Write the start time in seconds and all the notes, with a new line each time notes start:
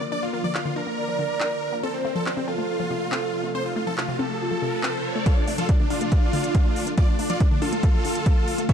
Already playing: D3 F3 A#3 F4 A#4 D5
0.01 A#3
0.12 D4 D5
0.23 F4
0.33 A#3 F4
0.44 F3 D5
0.55 F4, clap
0.65 D3 F4
0.76 D4 A#4
0.87 A#3
0.98 D5
1.08 F3
1.19 D3
1.40 D4, clap
1.73 A#3
1.83 C3 A3 C4 A4 C5, riser
1.94 C4
2.05 A3 C4
2.15 F3 A4
2.26 C4, clap
2.37 C3 C4
2.48 C4 F4 A4
2.58 A3
2.80 F3
2.90 C3
3.12 C4 A4, clap
3.44 A3
3.55 C4 C5
3.66 F4
3.76 A3 F4
3.87 F3 A4
3.98 F4, clap
4.08 C3 F4
4.19 C4 A4
4.30 A3
4.40 F4
4.51 F3
4.62 C3
4.83 C4, clap
5.15 A3
5.26 D3 F3 A3 F4 A4, kick, closed hi-hat
5.37 D4
5.47 A3 D4, open hi-hat
5.58 F3 F4 A4, closed hi-hat
5.69 D4, kick, closed hi-hat
5.80 D3 D4, high conga
5.90 D4 F4, open hi-hat
6.01 A3, closed hi-hat, high conga
6.12 kick, closed hi-hat
6.22 F3
6.33 D3, open hi-hat, high conga
6.44 closed hi-hat
6.55 D4, kick, closed hi-hat
6.65 high conga
6.76 open hi-hat
6.87 A3, closed hi-hat
6.98 D4 F4 D5, kick, closed hi-hat
7.08 D4
7.19 A3 D4, open hi-hat
7.30 F3 F4 D5, closed hi-hat
7.40 D4, kick, closed hi-hat
7.51 D3 D4, high conga
7.62 D4 F4 A4, open hi-hat
7.73 A3, closed hi-hat, high conga
7.83 kick, closed hi-hat
7.94 F3
8.05 D3, open hi-hat
8.15 closed hi-hat
8.26 D4, kick, closed hi-hat
8.48 open hi-hat
8.58 A3, closed hi-hat
8.69 C#4 C#5 E5, kick, closed hi-hat